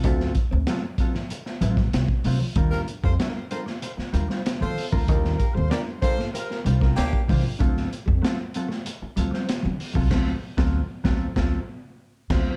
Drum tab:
CC |----------------|----------------|----------------|----------------|
HH |x-x-x-x-x-x-x-o-|x-x-x-x-x-x-x-o-|x-x-x-x-x-x-x-o-|x-x-x-x-x-x-x-o-|
SD |-o--o--o-o-oo---|-o--o--o-o-oo---|-o--o--o-o-oo---|-o--o--o---oo---|
BD |o-o---o----o-o--|o--o-----------o|o-o---o----o-oo-|o--o-----------o|

CC |x-------------x-|
HH |----------------|
SD |o--o--o-o-----o-|
BD |o--o--o-o-----o-|